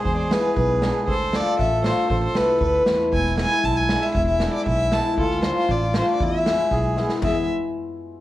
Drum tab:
CC |--------|--------|--------|--------|
SD |--o---o-|--o-o-o-|--o---o-|-oo---o-|
FT |--------|--------|--------|--------|
BD |o---o---|o---o---|o---o---|o---o---|

CC |--------|--------|--------|x-------|
SD |--o---o-|-oo---o-|--o-o-oo|--------|
FT |--------|--------|--------|o-------|
BD |o---o---|o---o---|o---o---|o-------|